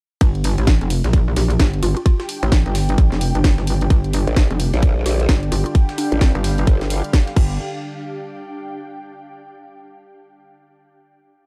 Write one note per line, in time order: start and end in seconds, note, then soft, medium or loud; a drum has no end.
0.21 0.56 G1 loud
0.21 7.35 D4 loud
0.21 kick loud
0.21 closed hi-hat medium
0.21 ride medium
0.35 closed hi-hat soft
0.44 closed hi-hat medium
0.44 open hi-hat loud
0.44 ride medium
0.55 0.79 A1 medium
0.55 7.37 G4 medium
0.55 closed hi-hat medium
0.67 kick loud
0.67 snare loud
0.67 closed hi-hat medium
0.67 ride medium
0.81 1.02 F1 loud
0.81 closed hi-hat soft
0.90 closed hi-hat medium
0.90 open hi-hat loud
0.90 ride medium
1.04 1.35 A#1 loud
1.04 snare medium
1.04 closed hi-hat medium
1.09 5.20 G5 medium
1.13 kick loud
1.13 closed hi-hat medium
1.13 ride medium
1.36 1.58 A#1 loud
1.36 1.81 G4 medium
1.36 snare soft
1.36 closed hi-hat medium
1.36 open hi-hat loud
1.36 ride medium
1.50 closed hi-hat medium
1.50 closed hi-hat soft
1.60 1.81 G1 medium
1.60 kick loud
1.60 snare loud
1.60 closed hi-hat medium
1.60 ride medium
1.74 closed hi-hat soft
1.83 1.94 G1 loud
1.83 1.92 F4 medium
1.83 closed hi-hat medium
1.83 open hi-hat loud
1.83 ride medium
1.97 2.03 F4 medium
1.97 closed hi-hat medium
2.06 2.15 F4 medium
2.06 kick loud
2.06 closed hi-hat medium
2.06 ride medium
2.20 2.25 F4 medium
2.20 snare medium
2.20 closed hi-hat soft
2.29 closed hi-hat medium
2.29 open hi-hat loud
2.29 ride medium
2.43 2.64 A1 medium
2.43 closed hi-hat medium
2.52 kick loud
2.52 snare loud
2.52 closed hi-hat medium
2.52 ride medium
2.66 2.97 G1 loud
2.66 closed hi-hat soft
2.75 snare soft
2.75 open hi-hat medium
2.75 open hi-hat loud
2.75 ride medium
2.89 closed hi-hat soft
2.89 closed hi-hat medium
2.98 3.10 A1 loud
2.98 kick loud
2.98 closed hi-hat medium
2.98 ride medium
3.12 3.33 F1 loud
3.12 snare soft
3.12 closed hi-hat soft
3.21 closed hi-hat medium
3.21 open hi-hat loud
3.21 ride medium
3.35 3.56 G1 loud
3.35 3.41 D4 medium
3.35 closed hi-hat medium
3.44 3.53 D4 medium
3.44 kick loud
3.44 snare loud
3.44 closed hi-hat medium
3.44 open hi-hat medium
3.44 ride medium
3.58 3.89 G1 loud
3.58 snare soft
3.58 closed hi-hat soft
3.67 closed hi-hat medium
3.67 open hi-hat loud
3.67 ride medium
3.81 closed hi-hat medium
3.90 4.25 G1 medium
3.90 7.33 D3 medium
3.90 7.33 G3 medium
3.90 7.33 G4 medium
3.90 kick loud
3.90 closed hi-hat medium
3.90 ride medium
4.04 closed hi-hat soft
4.13 closed hi-hat medium
4.13 open hi-hat loud
4.13 ride medium
4.27 4.48 A1 loud
4.27 closed hi-hat medium
4.36 kick loud
4.36 snare loud
4.36 closed hi-hat medium
4.36 ride medium
4.50 4.71 F1 loud
4.50 closed hi-hat soft
4.60 closed hi-hat medium
4.60 open hi-hat loud
4.60 ride medium
4.74 5.04 A#1 loud
4.74 snare medium
4.74 closed hi-hat medium
4.83 kick loud
4.83 closed hi-hat medium
4.83 ride medium
5.04 5.27 A#1 loud
5.04 5.50 G4 medium
5.04 7.36 F5 medium
5.04 snare soft
5.04 closed hi-hat medium
5.04 open hi-hat loud
5.04 ride medium
5.20 closed hi-hat soft
5.20 closed hi-hat medium
5.29 5.50 G1 loud
5.29 kick loud
5.29 snare loud
5.29 closed hi-hat medium
5.29 ride medium
5.43 closed hi-hat soft
5.52 5.64 G1 loud
5.52 5.61 F4 medium
5.52 closed hi-hat medium
5.52 open hi-hat loud
5.52 ride medium
5.66 5.72 F4 medium
5.66 closed hi-hat medium
5.75 kick loud
5.75 closed hi-hat medium
5.75 ride medium
5.89 snare medium
5.89 closed hi-hat soft
5.98 6.19 D4 loud
5.98 closed hi-hat medium
5.98 open hi-hat loud
5.98 ride medium
6.12 6.33 A1 loud
6.12 closed hi-hat medium
6.21 6.87 C4 medium
6.21 kick loud
6.21 snare loud
6.21 closed hi-hat medium
6.21 ride medium
6.35 6.66 G1 loud
6.35 closed hi-hat soft
6.44 snare soft
6.44 open hi-hat loud
6.44 open hi-hat medium
6.44 ride medium
6.58 closed hi-hat medium
6.58 closed hi-hat soft
6.67 7.02 G1 loud
6.67 kick loud
6.67 closed hi-hat medium
6.67 ride medium
6.81 snare soft
6.81 closed hi-hat soft
6.90 closed hi-hat medium
6.90 open hi-hat loud
6.90 ride medium
7.04 closed hi-hat soft
7.13 kick loud
7.13 snare loud
7.13 closed hi-hat medium
7.13 open hi-hat medium
7.13 ride medium
7.27 snare soft
7.27 closed hi-hat soft
7.36 7.58 G1 loud
7.36 9.17 D4 medium
7.36 kick loud
7.36 crash medium
7.45 9.17 G4 medium
7.75 9.40 G5 medium